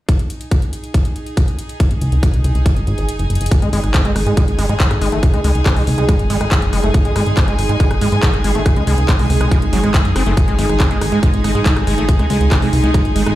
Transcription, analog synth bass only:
1.91 1.98 G#1 medium
2.01 2.09 C#2 loud
2.12 2.20 C#2 loud
2.34 2.41 C2 medium
2.44 2.52 C2 loud
2.55 2.62 C2 medium
2.76 2.84 G#1 medium
2.87 2.95 G#1 medium
2.98 3.05 G#1 medium
3.19 3.27 F#1 medium
3.30 3.37 F#1 medium
3.41 3.48 F#1 medium
3.62 3.70 G#1 medium
3.73 3.80 G#1 loud
3.84 3.91 G#1 medium
4.05 4.12 G#1 medium
4.16 4.23 G#1 loud
4.26 4.34 G#2 medium
4.48 4.55 G#1 medium
4.59 4.66 G#1 loud
4.69 4.77 G#2 medium
4.91 4.98 G#1 medium
5.01 5.09 G#1 medium
5.12 5.20 G#1 medium
5.34 5.41 C#2 medium
5.44 5.52 C#2 loud
5.55 5.62 C#2 medium
5.76 5.84 C2 medium
5.87 5.95 C2 loud
5.98 6.05 C2 medium
6.19 6.27 G#1 medium
6.30 6.37 G#1 loud
6.41 6.48 G#1 medium
6.62 6.70 F#1 medium
6.73 6.80 F#1 loud
6.84 6.91 F#1 loud
7.05 7.12 G#1 medium
7.16 7.23 G#1 loud
7.26 7.34 G#1 loud
7.48 7.55 G#1 medium
7.59 7.66 G#1 loud
7.69 7.77 G#2 medium
7.91 7.98 G#1 medium
8.01 8.09 G#1 loud
8.12 8.20 G#2 medium
8.34 8.41 G#1 medium
8.44 8.52 G#1 loud
8.55 8.62 G#1 medium
8.76 8.84 C#2 medium
8.87 8.95 C#2 loud
8.98 9.05 C#2 loud
9.19 9.27 C2 medium
9.30 9.37 C2 loud
9.41 9.48 C2 medium
9.62 9.70 G#1 medium
9.73 9.80 G#1 loud
9.84 9.91 G#1 medium
10.05 10.12 F#1 medium
10.16 10.23 F#1 loud
10.26 10.34 F#1 loud
10.48 10.55 G#1 medium
10.59 10.66 G#1 loud
10.69 10.77 G#1 loud
10.91 10.98 G#1 medium
11.01 11.09 G#1 loud
11.12 11.20 G#2 medium
11.34 11.41 G#1 medium
11.44 11.52 G#1 loud
11.55 11.62 G#2 medium
11.76 11.84 G#1 medium
11.87 11.95 G#1 loud
11.98 12.05 G#1 medium
12.19 12.27 C#2 medium
12.30 12.37 C#2 loud
12.41 12.48 C#2 loud
12.62 12.70 C2 medium
12.73 12.80 C2 loud
12.84 12.91 C2 medium
13.05 13.12 G#1 medium
13.16 13.23 G#1 medium
13.26 13.34 G#1 medium

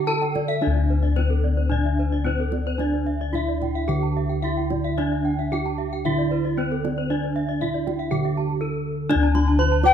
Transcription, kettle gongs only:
0.00 1.12 D3 medium
0.07 0.15 E4 soft
0.62 2.22 D4 medium
0.67 3.88 D2 medium
1.17 1.25 E4 soft
2.26 2.34 E4 soft
2.80 4.40 D4 medium
3.34 3.42 E4 soft
3.89 5.48 D3 medium
4.43 4.51 E4 soft
4.98 6.54 D4 medium
5.53 5.61 E4 soft
6.06 7.57 D3 medium
6.59 6.67 E4 soft
7.11 8.58 D4 medium
7.62 7.70 E4 soft
8.12 9.55 D3 medium
8.61 8.69 E4 soft
9.10 9.94 D4 soft
9.15 9.94 D2 medium
9.60 9.68 E4 soft

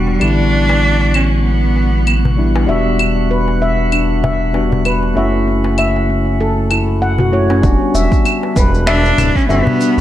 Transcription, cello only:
0.00 0.23 G3 medium
0.22 1.17 D4 loud
1.15 1.45 C#4 medium
1.46 2.34 B3 medium
8.56 8.70 G3 medium
8.87 9.37 D4 loud
9.36 9.49 C#4 loud
9.49 10.01 B3 loud

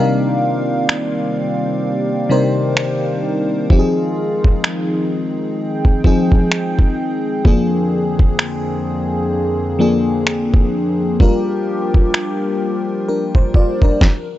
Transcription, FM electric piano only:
0.00 1.27 C3 medium
0.00 1.27 G3 medium
0.00 1.27 D4 medium
0.00 1.28 D#4 medium
0.00 1.28 A#4 medium
0.00 1.28 F5 medium
2.29 3.28 C3 medium
2.29 3.28 G3 medium
2.29 3.28 D4 medium
2.29 3.28 D#4 medium
2.29 3.29 A#4 medium
2.29 3.29 C5 medium
3.70 5.02 F3 medium
3.70 5.02 C4 medium
3.70 5.03 D#4 medium
3.70 3.79 G4 medium
3.79 5.06 G#4 medium
6.04 7.03 F3 medium
6.04 7.03 C4 medium
6.04 7.03 D#4 medium
6.04 7.04 G#4 medium
7.45 8.77 F3 medium
7.45 8.77 A#3 medium
7.45 8.78 D4 medium
7.45 8.78 G#4 medium
9.79 10.77 F3 medium
9.79 10.78 A#3 medium
9.79 10.78 D4 medium
9.79 10.79 G#4 medium
11.20 12.52 G3 medium
11.20 12.52 D4 medium
11.20 12.53 F4 medium
11.20 12.53 A#4 medium
13.09 13.34 D4 medium
13.09 13.34 A#4 medium
13.36 13.54 C5 medium
13.56 13.81 F4 medium
13.56 13.81 D5 medium
13.83 14.27 D4 soft
13.83 14.27 A#4 medium

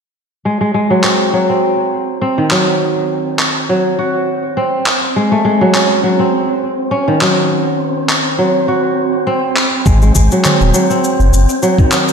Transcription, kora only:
0.45 0.60 G#3 medium
0.61 0.73 G#3 medium
0.74 2.41 G#3 medium
0.90 1.32 F#3 medium
1.04 1.49 C4 medium
1.33 2.41 F#3 medium
1.49 2.21 C4 medium
2.21 4.01 C4 medium
2.38 4.72 D#3 medium
2.51 3.68 F#3 medium
3.69 5.21 F#3 medium
3.99 5.45 F#4 medium
4.57 5.81 C4 medium
5.16 5.43 G#3 medium
5.32 5.51 A3 medium
5.45 7.12 G#3 medium
5.61 6.02 F#3 medium
5.75 6.25 C#4 medium
6.03 7.12 F#3 medium
6.19 6.97 C4 medium
6.91 8.65 C#4 medium
7.08 9.42 D#3 medium
7.21 8.37 F#3 medium
8.38 9.91 F#3 medium
8.68 10.14 F#4 medium
9.27 10.45 C4 medium
9.86 10.01 G#3 medium
10.02 10.14 G#3 medium
10.15 11.82 G#3 medium
10.32 10.73 F#3 medium
10.45 10.90 C4 medium
10.74 11.61 F#3 medium
10.90 12.13 C4 medium
11.63 11.82 F#3 medium
11.78 12.13 D#3 medium
11.92 12.13 F#3 medium

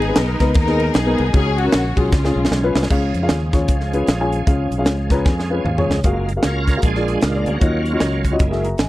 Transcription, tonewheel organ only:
0.00 1.32 G#3 medium
0.00 1.32 B3 medium
0.00 1.32 D#4 medium
1.33 2.10 G#3 medium
1.33 2.10 C#4 medium
1.33 1.40 F4 medium
1.38 2.13 F#4 medium
2.12 2.89 G#3 medium
2.12 2.89 C#4 medium
2.12 2.89 F4 medium
2.90 6.00 F3 medium
2.90 6.00 G#3 medium
2.90 6.00 C#4 medium
2.90 2.96 F#4 medium
2.95 6.02 G#4 medium
6.04 6.33 G#3 soft
6.04 6.33 A#3 soft
6.04 6.33 F4 medium
6.44 6.80 C#4 medium
6.44 6.81 F4 medium
6.44 6.85 A#4 medium
6.84 7.58 G#3 soft
6.84 7.58 D4 medium
6.84 7.58 F4 medium
6.84 7.21 G#4 medium
7.23 7.45 A#4 medium
7.47 8.21 A#3 medium
7.47 7.61 C#4 medium
7.47 7.83 F#4 medium
7.61 8.36 F#3 medium
7.61 8.36 C#4 soft
7.61 8.36 F4 medium
8.41 8.69 G#3 medium
8.41 8.69 A#3 soft
8.41 8.69 E4 medium

